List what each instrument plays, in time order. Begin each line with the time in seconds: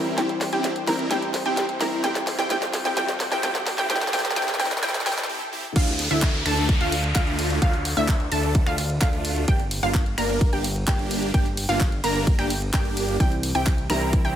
Already playing: analog synth bass C2, felt piano E3 G3 C4 E4, supersaw synth C4 E4 A#4, analog synth pad E4 G4 C5 G5, synth pluck A#5, riser
0.17 analog synth bass C2, felt piano E3 G3 C4 E4, supersaw synth C4 E4 G4, synth pluck G5, snare, closed hi-hat
0.29 closed hi-hat
0.41 snare, open hi-hat
0.53 analog synth bass C2, supersaw synth C4 E4 G4, synth pluck G5, closed hi-hat
0.64 snare, closed hi-hat
0.76 closed hi-hat
0.87 analog synth bass C2, felt piano E3 G3 C4 E4, supersaw synth C4 E4 A#4, synth pluck A#5, snare, open hi-hat
0.99 closed hi-hat
1.09 analog synth bass C2, felt piano E3 G3 C4 E4, supersaw synth C4 E4 G4, synth pluck G5, snare, closed hi-hat
1.22 closed hi-hat
1.34 snare, open hi-hat
1.45 analog synth bass C2, supersaw synth C4 E4 G4, synth pluck G5, closed hi-hat
1.57 snare, closed hi-hat
1.69 closed hi-hat
1.80 analog synth bass C2, felt piano E3 G3 C4 E4, supersaw synth C4 E4 A#4, synth pluck A#5, snare, open hi-hat
2.03 analog synth bass F2, felt piano E3 E4, supersaw synth C4 E4 G4, synth pluck G5, snare, closed hi-hat
2.15 snare, closed hi-hat
2.27 snare, open hi-hat
2.39 analog synth bass F2, supersaw synth C4 E4 G4, synth pluck G5, snare, closed hi-hat
2.49 analog synth bass F2, felt piano E3 G3 C4 E4, supersaw synth C4 E4 G4, synth pluck G5, snare, closed hi-hat
2.62 snare, closed hi-hat
2.73 snare, open hi-hat
2.85 analog synth bass F2, supersaw synth C4 E4 G4, synth pluck G5, snare, closed hi-hat
2.96 analog synth bass F2, felt piano E3 G3 C4 E4, supersaw synth C4 E4 G4, synth pluck G5, snare, closed hi-hat
3.08 snare, closed hi-hat
3.20 snare, open hi-hat
3.32 analog synth bass F2, supersaw synth C4 E4 G4, synth pluck G5, snare, closed hi-hat
3.42 analog synth bass F2, felt piano E3 G3 C4 E4, supersaw synth C4 E4 G4, synth pluck G5, snare, closed hi-hat
3.55 snare, closed hi-hat
3.67 snare, open hi-hat
3.78 analog synth bass F2, supersaw synth C4 E4 G4, synth pluck G5, snare
3.89 analog synth bass F2, felt piano E3 G3 C4 E4, supersaw synth C4 E4 G4, analog synth pad A#4, synth pluck G5, snare, closed hi-hat
3.96 snare
4.02 snare, closed hi-hat
4.07 snare
4.12 analog synth bass F2, felt piano E3 G3 C4 E4, supersaw synth C4 E4 G4, synth pluck G5, snare, open hi-hat
4.19 snare
4.25 snare, closed hi-hat
4.31 snare
4.35 analog synth bass F2, felt piano E3 G3 C4 E4, supersaw synth C4 E4 G4, synth pluck G5, snare, closed hi-hat
4.42 snare
4.48 snare, closed hi-hat
4.54 snare
4.59 analog synth bass F2, felt piano E3 G3 C4 E4, supersaw synth C4 E4 G4, synth pluck G5, snare, open hi-hat
4.65 snare
4.71 snare, closed hi-hat
4.77 snare
4.82 analog synth bass F2, felt piano E3 G3 C4 E4, supersaw synth C4 E4 G4, synth pluck G5, snare, closed hi-hat
4.89 snare
4.94 snare, closed hi-hat
5.00 snare
5.05 analog synth bass F2, felt piano E3 G3 C4 E4, supersaw synth C4 E4 G4, synth pluck G5, snare, open hi-hat
5.12 snare
5.18 snare, closed hi-hat
5.23 snare
5.29 supersaw synth C4 E4 G4
5.53 supersaw synth C4 E4 G4
5.76 analog synth bass D2, supersaw synth A3 D4 F4, synth pluck F5, kick, closed hi-hat, ride, crash, downlifter
5.88 closed hi-hat
5.99 open hi-hat, ride
6.11 analog synth bass D2, supersaw synth A3 D4 E4, synth pluck E5, closed hi-hat
6.22 kick, clap, closed hi-hat, ride
6.34 closed hi-hat
6.46 analog synth bass D2, supersaw synth A3 D4 A4, synth pluck A5, finger snap, open hi-hat, ride
6.57 closed hi-hat
6.69 kick, closed hi-hat, ride
6.80 analog synth bass D2, supersaw synth A3 D4 F4, synth pluck F5, closed hi-hat
6.92 open hi-hat, ride
7.04 closed hi-hat
7.15 analog synth bass D2, supersaw synth A3 D4 F4, synth pluck F5, kick, clap, closed hi-hat, ride
7.27 closed hi-hat
7.39 open hi-hat, ride
7.50 closed hi-hat
7.62 analog synth bass D2, synth pluck F5, kick, closed hi-hat, ride
7.74 closed hi-hat
7.85 open hi-hat, ride
7.97 analog synth bass D2, supersaw synth A3 D4 E4, synth pluck E5, closed hi-hat
8.08 kick, clap, closed hi-hat, ride
8.20 closed hi-hat
8.32 analog synth bass D2, supersaw synth A3 D4 A4, synth pluck A5, open hi-hat, ride
8.43 closed hi-hat
8.55 kick, closed hi-hat, ride
8.67 analog synth bass D2, supersaw synth A3 D4 F4, synth pluck F5, finger snap, closed hi-hat
8.78 open hi-hat, ride
8.90 closed hi-hat
9.01 analog synth bass D2, supersaw synth A3 D4 F4, synth pluck F5, kick, clap, closed hi-hat, ride
9.13 closed hi-hat
9.25 open hi-hat, ride
9.36 closed hi-hat
9.48 analog synth bass G1, supersaw synth A#3 D4 G4, synth pluck G5, kick, closed hi-hat, ride
9.60 closed hi-hat
9.71 open hi-hat, ride
9.83 analog synth bass G1, supersaw synth A#3 D4 F4, synth pluck F5, closed hi-hat
9.94 kick, clap, closed hi-hat, ride
10.06 closed hi-hat
10.18 analog synth bass G1, supersaw synth A#3 D4 A#4, synth pluck A#5, finger snap, open hi-hat, ride
10.30 closed hi-hat
10.41 kick, closed hi-hat, ride
10.53 analog synth bass G1, supersaw synth A#3 D4 G4, synth pluck G5, closed hi-hat
10.64 open hi-hat, ride
10.76 closed hi-hat
10.87 analog synth bass G1, supersaw synth A#3 D4 G4, synth pluck G5, kick, clap, closed hi-hat, ride
10.99 closed hi-hat
11.11 open hi-hat, ride
11.23 closed hi-hat
11.34 analog synth bass G1, supersaw synth A#3 D4 G4, synth pluck G5, kick, closed hi-hat, ride
11.46 closed hi-hat
11.57 open hi-hat, ride
11.69 analog synth bass G1, supersaw synth A#3 D4 F4, synth pluck F5, closed hi-hat
11.80 kick, clap, closed hi-hat, ride
11.92 closed hi-hat
12.04 analog synth bass G1, supersaw synth A#3 D4 A#4, synth pluck A#5, open hi-hat, ride
12.16 closed hi-hat
12.27 kick, closed hi-hat, ride
12.39 analog synth bass G1, supersaw synth A#3 D4 G4, synth pluck G5, finger snap, closed hi-hat
12.50 open hi-hat, ride
12.62 closed hi-hat
12.73 analog synth bass G1, supersaw synth A#3 D4 G4, synth pluck G5, kick, clap, closed hi-hat, ride
12.85 closed hi-hat
12.97 open hi-hat, ride
13.09 closed hi-hat
13.19 analog synth bass C2, felt piano E3 G3 C4 E4, supersaw synth C4, synth pluck G5, kick, closed hi-hat, ride
13.32 closed hi-hat
13.43 open hi-hat, ride
13.55 analog synth bass C2, supersaw synth C4 E4 G4, synth pluck G5, closed hi-hat
13.66 kick, clap, closed hi-hat, ride
13.78 closed hi-hat
13.89 analog synth bass C2, felt piano E3 G3 C4 E4, supersaw synth C4 E4 A#4, synth pluck A#5, finger snap, open hi-hat, ride
14.01 closed hi-hat
14.13 kick, closed hi-hat, ride
14.25 analog synth bass C2, supersaw synth C4 E4 G4, synth pluck G5, closed hi-hat